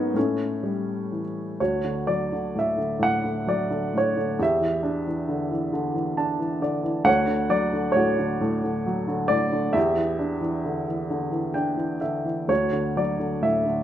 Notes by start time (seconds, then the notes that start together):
Already playing: G#2 F#3 G#3 A#3 B3 C#4 D#4
0.14 A2 C#4
0.18 A3
0.63 G3
1.12 E3
1.60 D2 F#4 C#5
1.84 D3
2.07 F#3 D5
2.32 D3
2.55 A2 E5
2.78 D3
2.99 A2 F#5
3.24 D3
3.47 F#3 D5
3.70 D3
3.94 A2 C#5
4.16 D3
4.39 E2 G4 E5
4.61 E3
4.83 D4
5.07 E3
5.28 D3
5.51 E3
5.73 D3
5.94 E3
6.17 D4 A5
6.39 E3
6.62 D3 D5
6.84 E3
7.04 D2 C#5 F#5
7.27 D3
7.49 F#3 D5
7.73 D3
7.92 A2 C#5
7.96 F#4
8.19 D3
8.41 A2
8.63 D3
8.86 F#3
9.08 D3
9.28 A2 D5
9.52 D3
9.73 E2 E5
9.78 G4
9.96 E3
10.19 D4
10.41 E3
10.65 D3
10.88 E3
11.10 D3
11.31 E3
11.54 D4 G5
11.77 E3
12.01 D3 E5
12.25 E3
12.48 D2 F#4 C#5
12.72 D3
12.96 F#3 D5
13.19 D3
13.42 A2 E5
13.66 D3